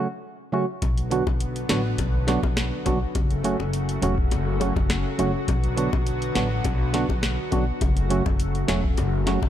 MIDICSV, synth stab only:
0, 0, Header, 1, 2, 480
1, 0, Start_track
1, 0, Key_signature, 2, "minor"
1, 0, Tempo, 582524
1, 677, Time_signature, 4, 2, 24, 8
1, 7820, End_track
2, 0, Start_track
2, 0, Title_t, "Synth stab"
2, 0, Program_c, 0, 62
2, 431, Note_on_c, 0, 49, 85
2, 434, Note_on_c, 0, 54, 79
2, 437, Note_on_c, 0, 57, 77
2, 440, Note_on_c, 0, 61, 76
2, 442, Note_on_c, 0, 66, 96
2, 535, Note_off_c, 0, 49, 0
2, 537, Note_off_c, 0, 54, 0
2, 538, Note_off_c, 0, 57, 0
2, 540, Note_off_c, 0, 61, 0
2, 541, Note_off_c, 0, 66, 0
2, 911, Note_on_c, 0, 50, 87
2, 914, Note_on_c, 0, 54, 80
2, 917, Note_on_c, 0, 59, 78
2, 920, Note_on_c, 0, 62, 81
2, 923, Note_on_c, 0, 66, 99
2, 1016, Note_off_c, 0, 50, 0
2, 1017, Note_off_c, 0, 54, 0
2, 1019, Note_off_c, 0, 59, 0
2, 1020, Note_off_c, 0, 62, 0
2, 1021, Note_off_c, 0, 66, 0
2, 1391, Note_on_c, 0, 50, 85
2, 1394, Note_on_c, 0, 54, 77
2, 1397, Note_on_c, 0, 59, 80
2, 1400, Note_on_c, 0, 62, 79
2, 1403, Note_on_c, 0, 66, 98
2, 1495, Note_off_c, 0, 50, 0
2, 1497, Note_off_c, 0, 54, 0
2, 1498, Note_off_c, 0, 59, 0
2, 1500, Note_off_c, 0, 62, 0
2, 1501, Note_off_c, 0, 66, 0
2, 1870, Note_on_c, 0, 50, 89
2, 1873, Note_on_c, 0, 54, 80
2, 1876, Note_on_c, 0, 59, 82
2, 1879, Note_on_c, 0, 62, 81
2, 1882, Note_on_c, 0, 66, 95
2, 1975, Note_off_c, 0, 50, 0
2, 1977, Note_off_c, 0, 54, 0
2, 1978, Note_off_c, 0, 59, 0
2, 1980, Note_off_c, 0, 62, 0
2, 1981, Note_off_c, 0, 66, 0
2, 2350, Note_on_c, 0, 50, 84
2, 2353, Note_on_c, 0, 54, 79
2, 2356, Note_on_c, 0, 59, 78
2, 2359, Note_on_c, 0, 62, 83
2, 2362, Note_on_c, 0, 66, 94
2, 2455, Note_off_c, 0, 50, 0
2, 2457, Note_off_c, 0, 54, 0
2, 2458, Note_off_c, 0, 59, 0
2, 2460, Note_off_c, 0, 62, 0
2, 2461, Note_off_c, 0, 66, 0
2, 2831, Note_on_c, 0, 49, 85
2, 2834, Note_on_c, 0, 54, 80
2, 2837, Note_on_c, 0, 57, 79
2, 2840, Note_on_c, 0, 61, 82
2, 2842, Note_on_c, 0, 66, 96
2, 2935, Note_off_c, 0, 49, 0
2, 2937, Note_off_c, 0, 54, 0
2, 2938, Note_off_c, 0, 57, 0
2, 2940, Note_off_c, 0, 61, 0
2, 2941, Note_off_c, 0, 66, 0
2, 3311, Note_on_c, 0, 49, 84
2, 3314, Note_on_c, 0, 54, 75
2, 3317, Note_on_c, 0, 57, 78
2, 3320, Note_on_c, 0, 61, 78
2, 3323, Note_on_c, 0, 66, 96
2, 3415, Note_off_c, 0, 49, 0
2, 3417, Note_off_c, 0, 54, 0
2, 3418, Note_off_c, 0, 57, 0
2, 3420, Note_off_c, 0, 61, 0
2, 3421, Note_off_c, 0, 66, 0
2, 3791, Note_on_c, 0, 49, 93
2, 3794, Note_on_c, 0, 54, 83
2, 3797, Note_on_c, 0, 57, 81
2, 3800, Note_on_c, 0, 61, 79
2, 3803, Note_on_c, 0, 66, 101
2, 3895, Note_off_c, 0, 49, 0
2, 3897, Note_off_c, 0, 54, 0
2, 3898, Note_off_c, 0, 57, 0
2, 3900, Note_off_c, 0, 61, 0
2, 3901, Note_off_c, 0, 66, 0
2, 4271, Note_on_c, 0, 49, 85
2, 4274, Note_on_c, 0, 54, 80
2, 4277, Note_on_c, 0, 57, 76
2, 4279, Note_on_c, 0, 61, 78
2, 4282, Note_on_c, 0, 66, 97
2, 4375, Note_off_c, 0, 49, 0
2, 4377, Note_off_c, 0, 54, 0
2, 4378, Note_off_c, 0, 57, 0
2, 4380, Note_off_c, 0, 61, 0
2, 4381, Note_off_c, 0, 66, 0
2, 4751, Note_on_c, 0, 50, 89
2, 4755, Note_on_c, 0, 54, 77
2, 4757, Note_on_c, 0, 59, 82
2, 4760, Note_on_c, 0, 62, 78
2, 4763, Note_on_c, 0, 66, 99
2, 4856, Note_off_c, 0, 50, 0
2, 4857, Note_off_c, 0, 54, 0
2, 4859, Note_off_c, 0, 59, 0
2, 4860, Note_off_c, 0, 62, 0
2, 4862, Note_off_c, 0, 66, 0
2, 5231, Note_on_c, 0, 50, 84
2, 5234, Note_on_c, 0, 54, 78
2, 5237, Note_on_c, 0, 59, 80
2, 5240, Note_on_c, 0, 62, 80
2, 5243, Note_on_c, 0, 66, 91
2, 5336, Note_off_c, 0, 50, 0
2, 5337, Note_off_c, 0, 54, 0
2, 5339, Note_off_c, 0, 59, 0
2, 5340, Note_off_c, 0, 62, 0
2, 5342, Note_off_c, 0, 66, 0
2, 5711, Note_on_c, 0, 50, 88
2, 5714, Note_on_c, 0, 54, 84
2, 5717, Note_on_c, 0, 59, 83
2, 5720, Note_on_c, 0, 62, 83
2, 5723, Note_on_c, 0, 66, 100
2, 5816, Note_off_c, 0, 50, 0
2, 5817, Note_off_c, 0, 54, 0
2, 5819, Note_off_c, 0, 59, 0
2, 5820, Note_off_c, 0, 62, 0
2, 5822, Note_off_c, 0, 66, 0
2, 6191, Note_on_c, 0, 50, 85
2, 6194, Note_on_c, 0, 54, 78
2, 6197, Note_on_c, 0, 59, 81
2, 6200, Note_on_c, 0, 62, 83
2, 6203, Note_on_c, 0, 66, 91
2, 6296, Note_off_c, 0, 50, 0
2, 6297, Note_off_c, 0, 54, 0
2, 6298, Note_off_c, 0, 59, 0
2, 6300, Note_off_c, 0, 62, 0
2, 6301, Note_off_c, 0, 66, 0
2, 6671, Note_on_c, 0, 49, 87
2, 6674, Note_on_c, 0, 54, 81
2, 6677, Note_on_c, 0, 57, 80
2, 6680, Note_on_c, 0, 61, 82
2, 6683, Note_on_c, 0, 66, 95
2, 6776, Note_off_c, 0, 49, 0
2, 6777, Note_off_c, 0, 54, 0
2, 6778, Note_off_c, 0, 57, 0
2, 6780, Note_off_c, 0, 61, 0
2, 6782, Note_off_c, 0, 66, 0
2, 7151, Note_on_c, 0, 49, 87
2, 7154, Note_on_c, 0, 54, 81
2, 7157, Note_on_c, 0, 57, 80
2, 7160, Note_on_c, 0, 61, 74
2, 7163, Note_on_c, 0, 66, 90
2, 7255, Note_off_c, 0, 49, 0
2, 7257, Note_off_c, 0, 54, 0
2, 7259, Note_off_c, 0, 57, 0
2, 7260, Note_off_c, 0, 61, 0
2, 7261, Note_off_c, 0, 66, 0
2, 7631, Note_on_c, 0, 49, 91
2, 7634, Note_on_c, 0, 54, 80
2, 7637, Note_on_c, 0, 57, 81
2, 7640, Note_on_c, 0, 61, 82
2, 7643, Note_on_c, 0, 66, 97
2, 7735, Note_off_c, 0, 49, 0
2, 7737, Note_off_c, 0, 54, 0
2, 7738, Note_off_c, 0, 57, 0
2, 7740, Note_off_c, 0, 61, 0
2, 7741, Note_off_c, 0, 66, 0
2, 7820, End_track
0, 0, End_of_file